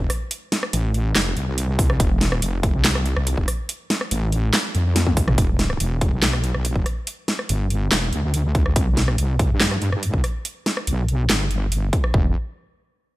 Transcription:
0.10 cross-stick, open hi-hat
0.31 closed hi-hat
0.52 snare, closed hi-hat
0.63 cross-stick
0.73 A1, closed hi-hat
0.94 closed hi-hat
1.15 F1, snare, clap, closed hi-hat
1.37 C2, closed hi-hat
1.58 closed hi-hat
1.79 kick, open hi-hat
1.90 cross-stick
2.00 F1, kick, closed hi-hat
2.21 snare, closed hi-hat
2.32 cross-stick
2.42 F1, closed hi-hat
2.63 kick, closed hi-hat
2.74 C2
2.85 snare, clap, closed hi-hat
2.95 cross-stick
3.06 closed hi-hat
3.17 C2, cross-stick
3.27 closed hi-hat
3.38 F1, kick
3.48 cross-stick, open hi-hat
3.69 closed hi-hat
3.90 snare, closed hi-hat
4.01 cross-stick
4.11 A1, closed hi-hat
4.32 closed hi-hat
4.54 snare, clap, closed hi-hat
4.75 F2, closed hi-hat
4.96 snare, closed hi-hat, high tom
5.07 kick, high tom
5.17 C2, kick, open hi-hat
5.28 A1, cross-stick, mid tom
5.38 E1, kick, closed hi-hat
5.59 snare, closed hi-hat
5.70 cross-stick
5.80 E1, closed hi-hat
6.01 kick, closed hi-hat
6.12 B1
6.22 snare, clap, closed hi-hat
6.33 cross-stick
6.44 closed hi-hat
6.54 B1, cross-stick
6.65 closed hi-hat
6.76 E1, kick
6.86 cross-stick, closed hi-hat
7.07 closed hi-hat
7.28 snare, closed hi-hat
7.39 cross-stick
7.49 G1, closed hi-hat
7.70 closed hi-hat
7.92 E1, snare, clap, closed hi-hat
8.13 D2, closed hi-hat
8.34 closed hi-hat
8.55 kick, closed hi-hat
8.66 cross-stick
8.76 C2, kick, closed hi-hat
8.97 snare, closed hi-hat
9.08 cross-stick
9.18 C2, closed hi-hat
9.39 kick, closed hi-hat
9.50 G2
9.60 snare, clap, closed hi-hat
9.71 cross-stick
9.82 closed hi-hat
9.92 G2, cross-stick
10.03 closed hi-hat
10.14 C2, kick
10.24 cross-stick, closed hi-hat
10.45 closed hi-hat
10.66 snare, closed hi-hat
10.77 cross-stick
10.87 B1, closed hi-hat
11.09 closed hi-hat
11.29 G1, snare, clap, closed hi-hat
11.51 closed hi-hat
11.72 closed hi-hat
11.93 kick, closed hi-hat
12.04 cross-stick
12.14 E1, kick

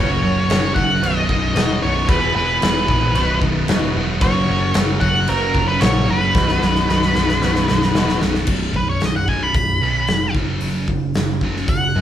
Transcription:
Already playing: F#1 F#2 C#3 F#3 A#3 C#4 F#4 A#4 C#5
0.00 F#4
0.22 F#1 F#2 C#3 F#3
0.48 F#1 F#2 C#3 F#3 A#3 C#4 F#4, snare, cowbell, crash
0.74 F#1 F#2 C#3 F#3 A#3 C#4 F#4 F#5, kick
0.79 F#3
1.02 B0 B1 F#2 B2 F#3 B3 D#4 F#4 B4 D#5, cowbell, crash
1.06 F#4
1.29 B0 B1 F#2 B2, kick
1.55 D#1 B1 F#2 B2 F#3 B3 D#4 F#4, snare, cowbell, crash
1.81 B0 B1 F#2 B2 B3 D#4 F#4 C#5
2.08 E1 E2 B2 E3 B3 E4 G#4 B4, kick, cowbell, crash
2.12 G#4
2.35 E1 E2 B2 E3 B4
2.62 E1 E2 B2 E3 B3 E4 G#4, snare, cowbell, crash
2.88 A#1 E2 B2 E3 E4 G#4, kick
2.93 B3
3.14 B0 B1 F#2 B2 F#3 B3 D#4 F#4 B4, cowbell, crash
3.19 D#4 F#4
3.41 B0 B1 F#2 B2, kick
3.67 D#1 B1 F#2 B2 F#3 B3 D#4 F#4, snare, cowbell, crash
3.95 E1 B1 F#2 B2 B3 D#4 F#4
4.21 F#1 F#2 C#3 F#3 A#3 C#4 F#4 A#4 C#5, kick, cowbell, crash
4.47 F#1 F#2 C#3 F#3
4.74 F#1 F#2 C#3 F#3 A#3 C#4 F#4, snare, cowbell, crash
5.00 F#1 F#2 C#3 F#3 C#4 F#4 F#5, kick
5.05 F#3 A#3
5.27 F#1 F#2 C#3 F#3 A#3 C#4 F#4 A#4, cowbell, crash
5.54 F#1 F#2 C#3 F#3, kick
5.68 B4
5.80 A#1 F#2 C#3 F#3 A#3 C#4 C#5, snare, cowbell, crash
5.84 F#4
6.07 F#1 F#2 C#3 F#3 A#3 B4
6.35 B0 B1 F#2 B2 F#3 B3 C4 D#4 E4 F#4 G4 C5, kick, snare, cowbell
6.48 snare
6.56 B3 D#4 F#4 B4
6.61 B0 B1 F#2 B2, snare
6.75 snare
6.88 B0 B1 F#2 B2 F#3 B3 D#4 F#4, snare, cowbell
7.02 snare
7.15 B0 B1 F#2 B2 B3 D#4 F#4, snare
7.29 snare
7.41 B0 B1 F#2 B2 F#3 B3 D#4 F#4, snare, cowbell
7.55 snare
7.68 B0 B1 F#2 B2, snare
7.82 snare
7.94 D#1 B1 F#2 B2 F#3 B3 D#4 F#4, snare, cowbell
8.09 snare
8.21 B0 B1 F#2 B2 B3 D#4 F#4, snare
8.35 snare
8.47 B0 B1 F#2 B2, kick, crash
8.74 B0 B1 F#2 B4, kick
8.90 C#5
9.01 B0 B1 F#2, snare, open hi-hat
9.05 D#5
9.16 F#5
9.28 B0 B1 F#2 B2 G#5, kick
9.43 B5
9.54 B0 B1 F#2 B5, kick, open hi-hat
9.81 B1 F#2 B2
10.07 F1 B1 F#2, snare, open hi-hat
10.35 F#1 F#2 C#3 F#3, kick
10.61 F#1 F#2 C#3 F#3, open hi-hat
10.88 F#1 F#2 C#3, kick
11.14 F#1 F#2 C#3, snare, open hi-hat
11.41 F#1 F#2 C#3 F#3, kick
11.56 snare
11.68 F#1 F#2 C#3 F#5, kick, open hi-hat
11.95 F#2 C#3 F#3

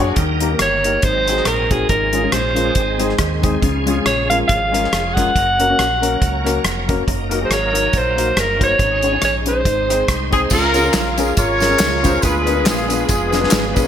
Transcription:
Already playing: F#2 F#3 A#3 D4 G#4
0.00 D4 F#4 G#4 C#5 F#5
0.15 D#2 D#3 G3 A#3 D#4 A#4, kick, closed hi-hat
0.40 A#3 D#4 G4 A#4, closed hi-hat
0.51 A#3 D#4 G4 A#4
0.59 G1 C#5, cross-stick, closed hi-hat
0.84 A#3 D#4 G4 A#4, closed hi-hat
1.02 G#1 G#2 F#3 C4 D#4 G#4 C5, kick, closed hi-hat
1.27 C4 D#4 F#4 G#4, cross-stick, closed hi-hat
1.37 cross-stick
1.45 A#1 A#4, cross-stick, closed hi-hat
1.70 C4 D#4 F#4 G#4 A#4, kick, closed hi-hat
1.89 G#1 G#2 F3 G#3 C#4 G#4 A#4, kick, closed hi-hat
2.12 G#3 C#4 F4 G#4, closed hi-hat
2.22 G#3 C#4 F4 G#4
2.32 A#1 C5, cross-stick, closed hi-hat
2.54 G#3 C#4 F4 A#4, closed hi-hat
2.74 G#1 G#2 D#3 G#3 C4 G4, kick, closed hi-hat
2.81 G#4
2.98 G#3 C4 D#4 G#4, closed hi-hat
3.09 cross-stick
3.18 D#2, kick, cross-stick, closed hi-hat
3.41 G#3 C4 D#4 G#4, kick, closed hi-hat
3.61 C#2 C#3 F3 G#3 C#4 G#4, kick, closed hi-hat
3.86 G#3 C#4 F4 G#4, closed hi-hat
3.96 G#3 C#4 F4 G#4
4.06 A#1 C#5, cross-stick, closed hi-hat
4.29 G#3 C#4 F4 A#4 F5, closed hi-hat
4.48 G#1 F5, kick, closed hi-hat
4.72 G#3 C#4 F4 A#4, cross-stick, closed hi-hat
4.84 cross-stick
4.92 F1, cross-stick, closed hi-hat
5.08 F5
5.14 G#3 C#4 F4 A#4 F#5, kick, closed hi-hat
5.35 F#1 F#3 A#3 C#4 A#4, kick, closed hi-hat
5.59 A#3 C#4 F#4 A#4, closed hi-hat
5.68 A#3 C#4 F#4 A#4
5.79 A#1, cross-stick, closed hi-hat
6.01 A#3 C#4 F#4 A#4, closed hi-hat
6.22 C#2, kick, closed hi-hat
6.44 A#3 C#4 F#4 A#4, cross-stick, closed hi-hat
6.64 F1, cross-stick, closed hi-hat
6.88 A#3 C#4 F#4 A#4, kick, closed hi-hat
7.07 F#1 F#3 A#3 D#4 A#4, kick, closed hi-hat
7.29 A#3 D#4 F#4 A#4, closed hi-hat
7.39 A#3 D#4 F#4 G#4
7.45 C5
7.50 G#1 C#5, cross-stick, closed hi-hat
7.72 A#3 D#4 F#4 A#4, closed hi-hat
7.93 A#1, kick, closed hi-hat
7.97 C5
8.16 A#3 D#4 F#4 A#4, closed hi-hat
8.36 G1 A#4, cross-stick, closed hi-hat
8.59 A#3 D#4 F#4 C5, kick, closed hi-hat
8.63 C#5
8.78 G#1 G#2 G#3 C#4 D#4 C5, kick, closed hi-hat
8.84 C#5
9.02 C#4 D#4 G#4 C#5, closed hi-hat
9.12 C#4 D#4 G#4 C#5
9.22 A#1 C#5, cross-stick, closed hi-hat
9.46 C#4 D#4 G#4 C5, closed hi-hat
9.64 G#1 G#2 G#3 C4 D#4 A#4, kick, closed hi-hat
9.70 C5
9.89 C4 D#4 G#4 C5, cross-stick, closed hi-hat
10.08 C2, kick, cross-stick, closed hi-hat
10.31 C4 D#4 G#4 C5, kick, closed hi-hat
10.50 C#2 C#3 G#3 C#4 F4 A#4, kick, crash, tambourine
10.74 C#4 F4 G#4 A#4, closed hi-hat, tambourine
10.84 C#4 F4 G#4 A#4
10.93 A#1, snare, clap, closed hi-hat, tambourine
11.17 C#4 F4 G#4 A#4, closed hi-hat, tambourine
11.37 G#1 F4 A#4 C#5, kick, closed hi-hat, tambourine
11.60 C#4 F4 G#4 A#4, snare, closed hi-hat, tambourine
11.69 C#4 F4 G#4 A#4
11.79 C#2, snare, clap, closed hi-hat, tambourine
12.03 C#4 F4 G#4 C5, kick, closed hi-hat, tambourine
12.12 C#4 F4 G#4 A#4
12.22 D2 D3 G#3 B3 D4 F4 G#4 B4, kick, closed hi-hat, tambourine
12.46 B3 D4 G#4 A#4, closed hi-hat, tambourine
12.54 B3 D4 G#4 A#4
12.65 A#1 B3 F4 G#4, snare, clap, closed hi-hat, tambourine
12.88 B3 D4 G#4 B4, closed hi-hat, tambourine
13.06 F1 B3 F4 G#4, kick, closed hi-hat, tambourine
13.31 B3 D4 G#4 B4, snare, closed hi-hat, tambourine
13.39 B3 D4 G#4 B4
13.44 snare
13.51 G#1, snare, clap, closed hi-hat, tambourine
13.74 B3 C#4 D4 F4 G#4 B4, kick, closed hi-hat, tambourine
13.83 B3 D4 G#4

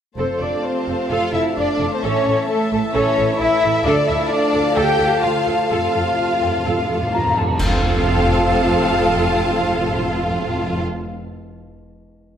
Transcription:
0.15 F1 F2 C3 F3 A3 C4 A4 C5 F5 A5
0.40 F1 D4 A4 D5
0.64 C4 C5
0.88 F1 A4
1.10 F1 F4 A4 F5
1.33 F1 E4 A4 E5
1.57 F1 D4 F4 D5
1.80 F1 A4
1.92 C4 C5
2.03 A1 A2 E3 C#4 A4 C#5 E5
2.26 A1 A4
2.49 A3 A4
2.72 A1 A3 A4
2.94 A1 C#4 A4 C#5
3.17 A1 A4
3.40 A1 E4 E5
3.63 A1 A4
3.85 D2 F3 A3 D4 A4 D5 F5 A5
4.08 D2 E4 A4 E5
4.30 D4 D5
4.54 D2 A4
4.75 D2 G4 A4 G5
4.99 D2 A4
5.22 D2 F4 F5
5.46 D2 A4
5.69 F2 C3 F4 A4 F5
5.79 F2
5.87 F2
5.94 F2 A4
6.02 F2
6.10 F2
6.18 F2 F5
6.26 F2
6.33 F2
6.41 F2 A4 G5
6.49 F2
6.57 F2
6.64 F2 A4 F5
6.72 F2
6.79 F2
6.87 F2 A4
6.95 F2
7.02 F2
7.10 F2 F4 A#5
7.18 F2
7.27 F2
7.34 F2 A4 A5
7.41 F2
7.49 F2
7.58 F2 C3 F3 A3 C4 F4 A4 F5 A5, concert bass drum, crash
7.68 F2
7.75 F2
7.81 F2
7.89 F2
7.95 F2
8.01 F2
8.07 F2
8.14 F2
8.21 F2
8.28 F2
8.34 F2
8.41 F2
8.47 F2
8.53 F2
8.60 F2
8.67 F2
8.74 F2
8.80 F2
8.87 F2
8.93 F2
9.00 F2
9.07 F2
9.13 F2
9.19 F2
9.26 F2
9.32 F2
9.39 F2
9.45 F2
9.52 F2
9.58 F2
9.64 F2
9.71 F2
9.78 F2
9.84 F2
9.91 F2
9.97 F2
10.03 F2
10.10 F2
10.16 F2
10.23 F2
10.30 F2
10.36 F2
10.42 F2
10.49 F2
10.55 F2
10.61 F2
10.67 F2
10.73 F2

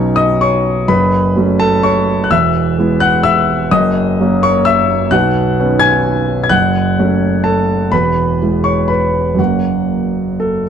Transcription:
Already playing: B1 B2 F#3 C#4 D#4 C#5 C#6
0.16 D#5 D#6
0.41 C#5 C#6
0.88 F#1 F#2 B4 B5
1.36 F#3 A3 C#4
1.60 A4 A5
1.83 C#5 C#6
2.24 F#6
2.31 E1 E2 E5 E6
2.78 G#3 B3 E4
3.00 F#5 F#6
3.23 E5 E6
3.71 F#1 F#2 D#5 D#6
4.20 F#3 A#3 C#4
4.43 C#5 C#6
4.65 E5 E6
5.11 B1 B2 F#5 F#6
5.59 D#3 B3 C#4
5.79 G#5 G#6
6.44 G#6
6.49 F#1 F#2 F#5 F#6
6.99 F#3 A3 C#4
7.44 A4 A5
7.92 E1 E2 B4 B5
8.42 G#3 B3 E4
8.64 C#5 C#6
8.88 B4 B5
9.35 F#2 F#3 A#3 C#4 F#5
9.39 F#1 F#4
10.40 A4

